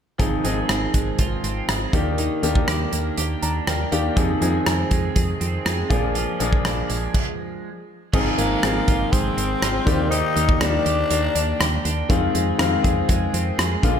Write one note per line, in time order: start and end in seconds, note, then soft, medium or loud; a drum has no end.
0.18 0.38 G#1 loud
0.18 1.93 D#3 medium
0.18 0.40 F3 medium
0.18 0.40 C4 medium
0.18 0.41 D#4 medium
0.18 0.41 G#4 medium
0.18 kick medium
0.18 closed hi-hat medium
0.43 0.63 G#1 medium
0.43 1.28 F3 medium
0.43 0.93 G#3 medium
0.43 1.29 C4 medium
0.43 1.29 D#4 medium
0.43 1.29 G#4 medium
0.43 closed hi-hat medium
0.69 0.87 G#1 medium
0.69 1.43 C4 medium
0.69 cross-stick loud
0.69 closed hi-hat medium
0.94 1.12 G#1 medium
0.94 1.68 G#3 soft
0.94 kick medium
0.94 closed hi-hat medium
1.19 1.37 G#1 loud
1.19 1.98 F4 medium
1.19 kick medium
1.19 closed hi-hat medium
1.43 1.61 G#1 medium
1.43 1.98 C4 medium
1.43 closed hi-hat medium
1.69 1.86 G#1 loud
1.69 1.98 G#3 medium
1.69 cross-stick loud
1.69 closed hi-hat medium
1.93 2.29 D#2 medium
1.93 2.35 D#3 medium
1.93 2.18 D#3 medium
1.93 2.36 A#3 medium
1.93 2.36 D4 medium
1.93 2.36 G4 medium
1.93 kick medium
1.93 closed hi-hat medium
2.18 4.16 D#3 medium
2.18 closed hi-hat medium
2.43 2.61 D#2 loud
2.43 3.27 D#3 medium
2.43 2.91 A#3 medium
2.43 3.27 A#3 medium
2.43 3.28 D4 medium
2.43 3.28 G4 medium
2.43 closed hi-hat medium
2.55 kick medium
2.68 2.86 D#2 medium
2.68 3.41 D4 medium
2.68 cross-stick loud
2.68 closed hi-hat medium
2.93 3.11 D#2 medium
2.93 3.66 A#3 medium
2.93 closed hi-hat medium
3.17 3.36 D#2 loud
3.17 3.91 G4 medium
3.17 closed hi-hat medium
3.42 3.60 D#2 loud
3.42 4.22 D4 medium
3.42 3.65 A#5 medium
3.42 closed hi-hat medium
3.67 3.85 D#2 loud
3.67 4.22 A#3 medium
3.67 3.90 G5 medium
3.67 cross-stick loud
3.67 closed hi-hat medium
3.92 4.10 D#2 loud
3.92 4.13 D#3 medium
3.92 4.13 A#3 medium
3.92 4.13 D4 medium
3.92 4.22 G4 medium
3.92 4.13 G4 medium
3.92 4.15 F5 medium
3.92 closed hi-hat medium
4.16 4.35 F2 loud
4.16 5.90 D#3 medium
4.16 4.37 F3 medium
4.16 4.38 C4 medium
4.16 4.38 D#4 medium
4.16 4.38 G#4 medium
4.16 kick loud
4.16 closed hi-hat medium
4.41 4.59 F2 medium
4.41 5.25 F3 medium
4.41 4.91 G#3 medium
4.41 5.26 C4 medium
4.41 5.26 D#4 medium
4.41 5.26 G#4 medium
4.41 closed hi-hat medium
4.66 4.84 F2 loud
4.66 5.39 C4 medium
4.66 cross-stick loud
4.66 closed hi-hat medium
4.91 5.09 F2 medium
4.91 5.65 G#3 medium
4.91 kick medium
4.91 closed hi-hat medium
5.16 5.34 F2 medium
5.16 6.68 G#4 medium
5.16 kick medium
5.16 closed hi-hat medium
5.40 5.59 F2 medium
5.40 5.95 C4 medium
5.40 closed hi-hat medium
5.65 5.83 F2 loud
5.65 6.39 G#3 medium
5.65 cross-stick loud
5.65 closed hi-hat medium
5.90 6.26 A#1 loud
5.90 6.32 F3 medium
5.90 6.14 F3 medium
5.90 6.32 A#3 medium
5.90 6.32 D4 medium
5.90 6.33 G#4 medium
5.90 kick loud
5.90 closed hi-hat medium
6.15 7.69 F3 medium
6.15 closed hi-hat medium
6.40 6.58 A#1 medium
6.40 7.14 F3 medium
6.40 6.90 G#3 medium
6.40 7.14 A#3 medium
6.40 7.14 D4 medium
6.40 7.14 G#4 medium
6.40 closed hi-hat medium
6.53 kick medium
6.65 6.83 A#1 medium
6.65 7.19 D4 medium
6.65 cross-stick loud
6.65 closed hi-hat medium
6.90 7.08 A#1 medium
6.90 7.69 G#3 medium
6.90 closed hi-hat medium
7.14 kick medium
7.14 crash medium
8.13 8.31 G#1 loud
8.13 9.86 D#3 medium
8.13 8.55 F3 medium
8.13 8.56 C4 medium
8.13 8.56 D#4 medium
8.13 8.86 F4 medium
8.13 8.56 G#4 medium
8.13 kick loud
8.13 crash medium
8.38 8.56 G#1 loud
8.38 9.11 G#3 medium
8.38 9.13 A#3 medium
8.38 closed hi-hat medium
8.63 8.81 G#1 medium
8.63 9.47 F3 medium
8.63 9.47 C4 medium
8.63 9.36 C4 medium
8.63 9.47 D#4 medium
8.63 9.48 G#4 medium
8.63 cross-stick loud
8.63 closed hi-hat medium
8.88 9.06 G#1 medium
8.88 9.61 F4 medium
8.88 kick medium
8.88 closed hi-hat medium
9.12 9.30 G#1 loud
9.12 9.92 G#3 medium
9.12 10.10 C4 medium
9.12 kick medium
9.12 closed hi-hat medium
9.37 9.55 G#1 medium
9.37 9.92 C4 medium
9.37 closed hi-hat medium
9.62 9.80 G#1 loud
9.62 9.92 F4 medium
9.62 cross-stick loud
9.62 closed hi-hat medium
9.86 10.22 D#2 medium
9.86 10.50 D#3 medium
9.86 10.11 D#3 medium
9.86 10.50 A#3 medium
9.86 10.50 G4 medium
9.86 10.50 D5 medium
9.86 kick loud
9.86 closed hi-hat medium
10.10 12.08 D#3 medium
10.10 10.61 D#4 loud
10.10 10.85 G4 medium
10.10 closed hi-hat medium
10.36 10.54 D#2 loud
10.36 11.09 A#3 medium
10.36 closed hi-hat medium
10.49 kick medium
10.60 10.79 D#2 medium
10.60 11.46 D#3 medium
10.60 11.46 A#3 medium
10.60 11.85 D4 medium
10.60 11.34 D4 medium
10.60 11.46 D4 medium
10.60 11.46 G4 medium
10.60 cross-stick loud
10.60 closed hi-hat medium
10.86 11.04 D#2 medium
10.86 11.58 G4 medium
10.86 closed hi-hat medium
11.10 11.29 D#2 loud
11.10 12.15 A#3 medium
11.10 closed hi-hat medium
11.35 11.53 D#2 loud
11.35 11.84 D4 medium
11.35 closed hi-hat medium
11.60 11.78 D#2 loud
11.60 12.10 G4 medium
11.60 cross-stick loud
11.60 closed hi-hat medium
11.85 12.03 D#2 loud
11.85 12.15 D4 medium
11.85 closed hi-hat medium
12.09 12.28 F2 loud
12.09 12.52 D#3 medium
12.09 13.83 D#3 medium
12.09 12.52 G#3 medium
12.09 12.52 C4 medium
12.09 12.52 F4 medium
12.09 12.83 G#4 medium
12.09 kick loud
12.09 closed hi-hat medium
12.34 12.53 F2 medium
12.34 13.08 G#3 medium
12.34 closed hi-hat medium
12.58 12.77 F2 loud
12.58 13.43 D#3 medium
12.58 13.43 G#3 medium
12.58 13.32 C4 medium
12.58 13.44 C4 medium
12.58 13.44 F4 loud
12.58 cross-stick loud
12.58 closed hi-hat medium
12.84 13.02 F2 medium
12.84 13.58 G#4 medium
12.84 kick medium
12.84 closed hi-hat medium
13.09 13.27 F2 loud
13.09 14.00 G#3 medium
13.09 kick medium
13.09 closed hi-hat medium
13.34 13.52 F2 loud
13.34 13.88 C4 medium
13.34 closed hi-hat medium
13.58 13.76 F2 loud
13.58 14.00 G#4 medium
13.58 cross-stick loud
13.58 closed hi-hat medium
13.83 14.00 A#1 loud
13.83 14.00 D3 medium
13.83 14.00 F3 medium
13.83 14.00 G#3 medium
13.83 14.00 A#3 medium
13.83 14.00 F4 medium
13.83 kick loud
13.83 closed hi-hat medium